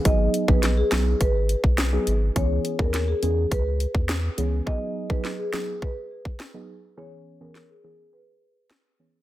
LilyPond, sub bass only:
\new Staff \with { instrumentName = "Sub bass" } { \clef bass \time 4/4 \key gis \minor \tempo 4 = 104 gis,,8 r16 ais,,8. b,,8 gis,,8. b,,8. gis,,8 | cis,8 r16 dis,8. e,8 cis,8. e,8. cis,8 | r1 | r1 | }